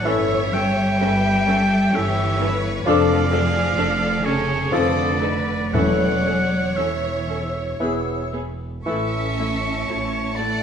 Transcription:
0.02 G1 E3 C#4 A4 C#5 E5
0.06 A4 C#6
0.51 G3 C#4 A4 E5 G5
1.00 G1 C#4 A4 B4
1.46 C#4 A4
1.92 G1 E3 C#4 G4 A4 C#5 E5
2.39 C#4 A4 B4
2.84 F1 F3 D4 A4 D5 F5 D6
3.32 D4 G#4 A4
3.78 F1 D4 A4
4.23 C#3 D4 G#4 A4 C#5
4.71 F1 D3 F3 C4 D#4 A4 B4 D5 D#6
5.20 D#4 A4 B4
5.72 E1 E2 E3 F#3 C#4 A4 C#5 D5 F#5 C#6
6.25 C#4 A4
6.76 E1 E3 C#4 A4 C#5 E5
7.28 C#4 A4
7.79 E1 E3 B3 G#4 E6
8.33 B3 G#4
8.84 A1 E3 A3 C#4 E4 E5 A5 C#6 E6
8.89 A4
9.39 A3 E4
9.88 A1 A3 E4 C#5
10.35 A3 E4 D5 F#5 A5

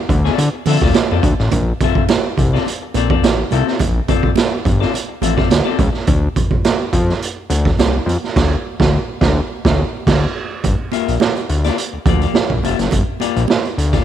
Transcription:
0.09 D2, kick, closed hi-hat
0.25 C4 F4 A4 D5, snare
0.38 D3, muted clean electric guitar stroke, closed hi-hat, muted conga
0.54 muted clean electric guitar stroke
0.66 D3 C4 F4 A4 E5, open hi-hat, muted conga, low conga
0.82 D2 C4 F4 A4 D5, kick, snare
0.94 muted clean electric guitar stroke, snare, closed hi-hat, high conga
1.11 F2 C4 F4 A4 D5
1.23 D2, muted clean electric guitar stroke, kick, closed hi-hat, high conga
1.39 A1, muted clean electric guitar stroke, snare
1.51 A#1, kick, closed hi-hat, muted conga
1.80 C4 F4 A4 E5, kick, closed hi-hat, muted conga
1.95 C2, kick
2.09 muted clean electric guitar stroke, snare, closed hi-hat, high conga
2.26 muted clean electric guitar stroke
2.38 C2, kick, closed hi-hat
2.53 C4 F4 A4 D5, snare
2.67 muted clean electric guitar stroke, closed hi-hat, muted conga
2.83 muted clean electric guitar stroke
2.94 A#1 C4 F4 A4 D5, closed hi-hat, muted conga
3.10 C4 F4 A4 D5, kick
3.23 A1, snare, closed hi-hat, high conga
3.39 muted clean electric guitar stroke
3.51 C2 C4 F4 A4 E5, closed hi-hat, high conga
3.67 muted clean electric guitar stroke, snare
3.79 A#1, kick, closed hi-hat, muted conga
4.08 C4 F4 A4 D5, kick, closed hi-hat, muted conga
4.23 G1, kick
4.36 muted clean electric guitar stroke, snare, closed hi-hat, high conga
4.52 muted clean electric guitar stroke
4.65 G1, kick, closed hi-hat
4.80 C4 F4 A4 D5, snare
4.94 muted clean electric guitar stroke, closed hi-hat, muted conga
5.09 muted clean electric guitar stroke
5.22 A1 C4 F4 A4 E5, closed hi-hat, muted conga, low conga
5.37 C4 F4 A4 D5, kick, snare
5.50 D2, muted clean electric guitar stroke, snare, closed hi-hat, high conga
5.65 C4 F4 A4 D5
5.78 C#2, muted clean electric guitar stroke, kick, closed hi-hat, high conga
5.93 muted clean electric guitar stroke, snare
6.07 D2, kick, closed hi-hat, muted conga
6.36 kick, closed hi-hat, muted conga
6.51 F2, kick
6.64 snare, closed hi-hat, high conga
6.93 F2, kick, closed hi-hat
7.09 snare
7.22 closed hi-hat
7.50 D2, closed hi-hat, muted conga
7.65 kick, snare
7.79 C2, snare, closed hi-hat, high conga
8.06 F2, closed hi-hat, high conga
8.24 snare
8.36 D2, kick, snare, crash
8.80 D2, kick, snare
9.21 D2, kick, snare
9.65 D2, kick, snare
10.07 D2, kick, snare, crash
10.64 G1, kick, closed hi-hat, muted conga
10.92 A#3 F4 G4 E5, closed hi-hat, muted conga
11.08 A#1, closed hi-hat
11.20 muted clean electric guitar stroke, snare, high conga
11.36 muted clean electric guitar stroke, closed hi-hat
11.49 D2, closed hi-hat
11.64 A#3 F4 G4 D5, snare, closed hi-hat
11.77 muted clean electric guitar stroke, closed hi-hat
11.93 D2, muted clean electric guitar stroke
12.06 D2 A#3 F4 G4 D5, kick, closed hi-hat, muted conga, low conga
12.21 A#3 F4 G4 D5, closed hi-hat
12.34 snare, high conga
12.49 A#1, muted clean electric guitar stroke, kick, high conga
12.63 F1 A#3 F4 G4 E5, closed hi-hat, high conga
12.79 F#1, muted clean electric guitar stroke, snare, closed hi-hat
12.91 G1, kick, closed hi-hat, muted conga
13.20 A#3 F4 G4 D5, closed hi-hat, muted conga
13.36 A#1, closed hi-hat
13.48 muted clean electric guitar stroke, snare, high conga
13.64 muted clean electric guitar stroke, closed hi-hat
13.78 D2, closed hi-hat
13.93 A#3 F4 G4 D5, kick, snare, closed hi-hat

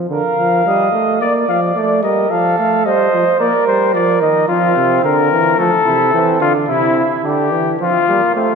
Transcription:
0.09 D3 A#4 F5
0.38 F3
0.65 G3 D#5
0.92 A3
1.20 A#3 D5
1.48 F3 F5
1.75 A3 D5
2.03 G3 A#4 D#5
2.30 F3 A4 F5
2.58 A3 F5
2.85 G3 C5 D#5
3.12 F3
3.39 A#3 A#4 D5
3.67 G3 C5
3.94 F3 A#4 D5
4.21 D#3 D#5
4.48 F3 C4 F4
4.76 C3
5.03 D3 A#4
5.31 E3
5.57 F3 A3 A4
5.86 C3 E4
6.13 E3 C4
6.41 D3 D4 F4
6.68 C3 E4
6.97 E4
7.23 D3 D4 G4
7.52 E3
7.80 F3 C4 F4
8.08 G3 A#3
8.35 A3 C4 F4

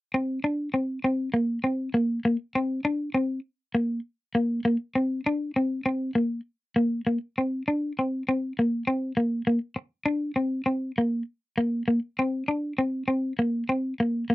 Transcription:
0.14 C4
0.44 D4
0.74 C4
1.04 C4
1.34 A#3
1.64 C4
1.94 A#3
2.25 A#3
2.55 C4
2.85 D4
3.14 C4
3.75 A#3
4.35 A#3
4.65 A#3
4.95 C4
5.26 D4
5.56 C4
5.86 C4
6.15 A#3
6.76 A#3
7.07 A#3
7.38 C4
7.68 D4
7.99 C4
8.29 C4
8.59 A#3
8.87 C4
9.17 A#3
9.47 A#3
9.76 muted clean electric guitar stroke
10.06 D4
10.36 C4
10.66 C4
10.98 A#3
11.58 A#3
11.88 A#3
12.19 C4
12.48 D4
12.78 C4
13.08 C4
13.39 A#3
13.69 C4
14.00 A#3
14.30 A#3

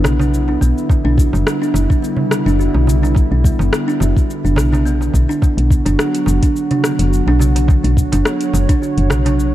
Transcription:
Already playing: D3 F#3 B3 E4 F#4
0.04 B1, cross-stick, darbuka tek, darbuka dum, cabasa
0.20 D4, darbuka tek, darbuka dum, cabasa
0.34 cabasa
0.48 D4, darbuka ka
0.61 B1 B3, kick, darbuka ka, cabasa
0.78 cabasa
0.89 G3, kick, darbuka tek, cabasa
1.05 B1 D4
1.17 F#4, kick, cabasa
1.33 F#1, darbuka tek, cabasa
1.47 cross-stick, cabasa
1.62 D4, cabasa
1.74 F#1, darbuka tek, cabasa
1.90 D4, kick, cabasa
2.02 B3, cabasa
2.17 darbuka dum
2.31 cross-stick, cabasa
2.46 F#1 D4, cabasa
2.59 F#4, cabasa
2.74 B1, darbuka tek
2.87 darbuka ka, darbuka dum, cabasa
3.02 D4, darbuka ka, darbuka tek, cabasa
3.15 kick, darbuka tek, cabasa
3.31 B1 D4
3.44 B3, kick, cabasa
3.59 F#1, darbuka ka, darbuka tek, cabasa
3.73 cross-stick, cabasa
3.88 D4, cabasa
4.00 F#1 F#4, darbuka tek, cabasa
4.17 kick, cabasa
4.30 cabasa
4.45 F#1 D4, cabasa
4.56 B1, cross-stick, darbuka tek, darbuka dum, cabasa
4.72 D4, darbuka tek, darbuka dum, cabasa
4.86 B3, cabasa
5.01 darbuka ka, cabasa
5.14 B1, kick, darbuka ka, cabasa
5.29 D4, darbuka ka, cabasa
5.42 F#3 B3 F#4, kick, darbuka tek, cabasa
5.57 B1, closed hi-hat
5.71 kick, cabasa
5.86 F#1 D4, closed hi-hat, darbuka tek, cabasa
5.99 F#4, cross-stick, cabasa
6.15 closed hi-hat, cabasa
6.26 F#1, darbuka tek, cabasa
6.43 D4, kick, closed hi-hat, cabasa
6.56 cabasa
6.71 D4, closed hi-hat, darbuka dum
6.84 B3, cross-stick, cabasa
6.99 F#1, closed hi-hat, cabasa
7.13 cabasa
7.27 B1 D4, darbuka tek
7.39 F#4, darbuka ka, darbuka dum, cabasa
7.56 closed hi-hat, darbuka ka, darbuka tek, cabasa
7.68 C#5, kick, darbuka tek, cabasa
7.84 B1 D4, closed hi-hat
7.97 kick, cabasa
8.12 F#1 D4, closed hi-hat, darbuka ka, darbuka tek, cabasa
8.25 B3, cross-stick, cabasa
8.41 closed hi-hat, cabasa
8.53 F#1, darbuka tek, cabasa
8.69 D4, kick, closed hi-hat, cabasa
8.82 F#4, cabasa
8.97 F#1, closed hi-hat
9.10 B1, cross-stick, darbuka tek, darbuka dum, cabasa
9.25 D4, closed hi-hat, darbuka tek, darbuka dum, cabasa
9.40 cabasa

